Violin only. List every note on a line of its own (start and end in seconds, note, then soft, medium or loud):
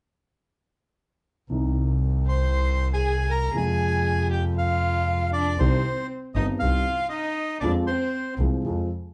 2.28 2.88 C5 medium
2.93 3.28 G#4 medium
3.30 3.53 A#4 medium
3.54 4.26 G#4 medium
4.30 4.42 G4 soft
4.58 5.30 F4 soft
5.33 5.57 D4 medium
5.59 6.07 C4 medium
6.36 6.47 D#4 medium
6.63 7.09 F4 medium
7.12 7.59 D#4 medium
7.61 7.73 D4 medium
7.87 8.35 C4 medium